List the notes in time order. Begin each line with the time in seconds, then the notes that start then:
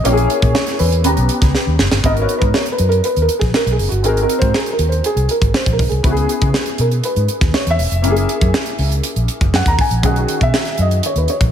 0.04 A#1 A#3 C#4 E4 G4 C#5, closed hi-hat
0.12 G#4
0.17 closed hi-hat
0.30 closed hi-hat
0.42 A#2, kick, closed hi-hat
0.55 C#5, snare
0.67 snare, closed hi-hat
0.79 E2 B4, open hi-hat
0.92 closed hi-hat
1.03 D#2 B3 C#4 G4 A#5, closed hi-hat
1.17 B1, closed hi-hat
1.29 closed hi-hat
1.42 C#2, kick, snare, closed hi-hat
1.55 snare
1.67 D#2
1.79 F#1, snare
1.91 G1, snare
2.03 G#1 B3 D#4 F#4 A#4 D#5, kick, closed hi-hat
2.17 closed hi-hat
2.22 C#5
2.29 closed hi-hat
2.39 G#2 B4, kick, closed hi-hat
2.54 C#5, snare
2.66 closed hi-hat
2.72 B4
2.78 F#2, closed hi-hat
2.89 A#4, closed hi-hat
3.04 B4, closed hi-hat
3.16 D#2, closed hi-hat
3.22 A#4
3.29 closed hi-hat
3.39 A#1 G#4, kick, snare, closed hi-hat
3.54 A#4, snare
3.66 B1, closed hi-hat
3.72 G#4
3.79 F#1, open hi-hat
3.89 G1 F#4, closed hi-hat
4.03 G#1 C4 D#4 F#4 G#4 A#4, closed hi-hat
4.17 closed hi-hat
4.22 A#4
4.29 closed hi-hat
4.39 G#2 C5, kick, closed hi-hat
4.54 G#4, snare
4.66 closed hi-hat
4.73 A#4
4.79 D#2, closed hi-hat
4.89 C5, closed hi-hat
5.04 G#4, closed hi-hat
5.16 C2, closed hi-hat
5.29 A#4, closed hi-hat
5.42 G#1, kick, closed hi-hat
5.54 C5, snare
5.66 A#1, kick, closed hi-hat
5.73 A#4
5.79 B1, kick, open hi-hat
5.89 C2 G#4, closed hi-hat
6.03 C#2 B3 C#4 E4 F#4, kick, closed hi-hat
6.11 G#4
6.17 closed hi-hat
6.29 closed hi-hat
6.41 C#3, kick, closed hi-hat
6.54 snare
6.66 closed hi-hat
6.78 B2 A#4, closed hi-hat
6.91 closed hi-hat
7.04 B4, closed hi-hat
7.16 G#2, closed hi-hat
7.28 closed hi-hat
7.41 D#2, kick, snare, closed hi-hat
7.54 C#5, snare
7.67 E2 E5, closed hi-hat
7.79 E1, open hi-hat
7.91 F1, closed hi-hat
8.02 F#1 A#3 C#4 E4 G4, closed hi-hat
8.11 G#4
8.16 closed hi-hat
8.29 closed hi-hat
8.41 F#2, kick, closed hi-hat
8.54 snare
8.66 closed hi-hat
8.79 C#2, open hi-hat
8.92 closed hi-hat
9.03 closed hi-hat
9.16 A#1, closed hi-hat
9.28 closed hi-hat
9.41 F#1, kick, closed hi-hat
9.53 F#2 F#5, snare
9.66 D#2 A#5, kick, closed hi-hat
9.79 G#5, kick, open hi-hat
9.91 A#1, closed hi-hat
10.02 B1 D#3 C#4 F#4 G#4 F#5, kick, closed hi-hat
10.16 closed hi-hat
10.28 closed hi-hat
10.41 B2 E5, kick, closed hi-hat
10.54 snare
10.65 snare, closed hi-hat
10.78 F#2 D#5, closed hi-hat
10.91 closed hi-hat
11.03 C#5, closed hi-hat
11.16 D#2 B4, closed hi-hat
11.28 C#5, closed hi-hat
11.41 A#1, kick, closed hi-hat